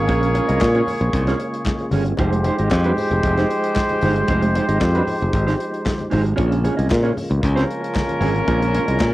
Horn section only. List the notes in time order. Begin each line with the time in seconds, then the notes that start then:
Already playing: A#3 G#4 C#5
2.19 G#3 G4 C5
7.43 F3 C#4 A#4